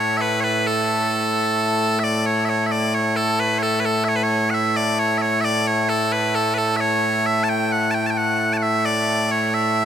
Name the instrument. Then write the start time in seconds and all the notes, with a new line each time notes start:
bagpipes
Already playing: A2 A3
0.00 C#5
0.17 E5
0.21 B4
0.40 B4 C#5
0.67 A4
1.99 E5
2.04 D5
2.26 C#5
2.45 E5
2.49 C#5
2.66 E5
2.72 D5
2.94 C#5
3.16 A4
3.40 B4
3.58 C#5
3.63 A4
3.80 B4
3.86 A4
4.04 C#5 E5
4.16 B4
4.23 C#5
4.50 F#5
4.54 E5
4.76 D5
4.99 C#5
5.18 C#5 E5
5.41 D5 E5
5.67 C#5
5.89 A4
6.12 B4
6.35 A4
6.54 A4 B4
6.77 C#5 E5
7.26 E5
7.44 A5
7.49 G5
7.72 F#5
7.91 G5 A5
8.06 G5 A5
8.17 F#5
8.53 A5
8.57 F#5
8.63 E5
8.85 D5
9.31 C#5
9.54 E5